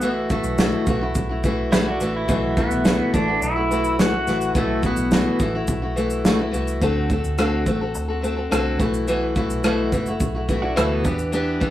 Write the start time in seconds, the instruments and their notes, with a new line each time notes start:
Already playing: fingered electric bass B1
0.00 steel-string acoustic guitar B2 E3 A3 E4 F#4, electric slide guitar B3, shaker
0.30 steel-string acoustic guitar E3 A3 E4 F#4, electric slide guitar A3, kick, shaker
0.44 fingered electric bass B1, shaker
0.58 steel-string acoustic guitar B2 E3 A3 E4 F#4, snare, shaker
0.87 fingered electric bass B1, steel-string acoustic guitar E3 A3 E4 F#4, kick, shaker
1.01 steel-string acoustic guitar A3 E4 F#4
1.15 fingered electric bass B1, kick, shaker
1.29 steel-string acoustic guitar A3 E4 F#4
1.44 steel-string acoustic guitar E3 A3 E4 F#4, kick, shaker
1.72 steel-string acoustic guitar B2 E3 A3 E4 F#4, snare, shaker
1.87 steel-string acoustic guitar A3 E4 F#4, clean electric guitar D4
2.00 fingered electric bass A1, steel-string acoustic guitar E3 A3 E4 F#4, shaker
2.16 clean electric guitar E4
2.28 fingered electric bass B1, steel-string acoustic guitar B2 E3 A3 E4 F#4, electric slide guitar A3, kick, shaker
2.57 steel-string acoustic guitar E3 A3 E4 F#4, electric slide guitar B3, kick, shaker
2.71 fingered electric bass B1, shaker
2.85 steel-string acoustic guitar B2 E3 A3 E4 F#4, snare, shaker
3.14 fingered electric bass A1, steel-string acoustic guitar E3 A3 E4 F#4, electric slide guitar D4, kick, shaker
3.28 steel-string acoustic guitar A3 E4 F#4
3.42 fingered electric bass B1, electric slide guitar E4, shaker
3.56 steel-string acoustic guitar A3 E4 F#4
3.71 steel-string acoustic guitar E3 A3 E4 F#4, shaker
3.84 shaker
3.99 steel-string acoustic guitar B2 E3 A3 E4 F#4, electric slide guitar F#4, snare, shaker
4.14 steel-string acoustic guitar A3 E4 F#4
4.27 fingered electric bass A1, steel-string acoustic guitar E3 A3 E4 F#4, snare, shaker
4.41 shaker
4.55 fingered electric bass B1, steel-string acoustic guitar B2 E3 A3 E4 F#4, electric slide guitar A3, kick, shaker
4.83 steel-string acoustic guitar E3 A3 E4 F#4, electric slide guitar B3, kick, shaker
4.97 fingered electric bass B1, shaker
5.11 steel-string acoustic guitar B2 E3 A3 E4 F#4, snare, shaker
5.40 fingered electric bass A1, steel-string acoustic guitar E3 A3 E4 F#4, kick, shaker
5.55 steel-string acoustic guitar A3 E4 F#4
5.68 fingered electric bass B1, kick, shaker
5.82 steel-string acoustic guitar A3 E4 F#4
5.96 steel-string acoustic guitar E3 A3 E4 F#4, shaker
6.10 shaker
6.25 steel-string acoustic guitar B2 E3 A3 E4 F#4, snare, shaker
6.39 steel-string acoustic guitar A3 E4 F#4
6.52 fingered electric bass C2, steel-string acoustic guitar E3 A3 E4 F#4, shaker
6.68 shaker
6.82 fingered electric bass D2, steel-string acoustic guitar D3 A3 C4 F#4 A4, kick, shaker
7.10 steel-string acoustic guitar A3 C4 F#4 A4, kick, shaker
7.24 fingered electric bass D2, shaker
7.38 steel-string acoustic guitar D3 A3 C4 F#4 A4, cross-stick, shaker
7.66 fingered electric bass A1, steel-string acoustic guitar A3 C4 F#4 A4, kick, shaker
7.81 steel-string acoustic guitar C4 F#4 A4
7.95 fingered electric bass D2, shaker
8.08 steel-string acoustic guitar C4 F#4 A4
8.22 steel-string acoustic guitar A3 C4 F#4 A4, shaker
8.36 steel-string acoustic guitar C4 F#4 A4
8.51 fingered electric bass C2, steel-string acoustic guitar D3 A3 C4 F#4 A4, cross-stick, shaker
8.79 fingered electric bass B1, steel-string acoustic guitar E3 A3 E4 F#4, kick, shaker
8.94 shaker
9.08 steel-string acoustic guitar B2 E3 A3 E4 F#4, shaker
9.36 steel-string acoustic guitar E3 A3 E4 F#4, kick, shaker
9.50 fingered electric bass B1, shaker
9.64 steel-string acoustic guitar B2 E3 A3 E4 F#4, cross-stick, shaker
9.92 fingered electric bass F#1, steel-string acoustic guitar E3 A3 E4 F#4, kick, shaker
10.06 steel-string acoustic guitar A3 E4 F#4, shaker
10.20 fingered electric bass B1, kick, shaker
10.35 steel-string acoustic guitar A3 E4 F#4
10.48 steel-string acoustic guitar E3 A3 E4 F#4, kick, shaker
10.62 steel-string acoustic guitar A3 E4 F#4, clean electric guitar D4
10.76 fingered electric bass D2, steel-string acoustic guitar B2 E3 A3 E4 F#4, cross-stick, shaker
10.91 clean electric guitar B3
11.04 fingered electric bass E2, steel-string acoustic guitar E3 B3 D4 G4, kick, cross-stick, shaker
11.19 shaker
11.32 steel-string acoustic guitar E3 B3 D4 G4, shaker
11.60 steel-string acoustic guitar E3 B3 D4 G4, kick, shaker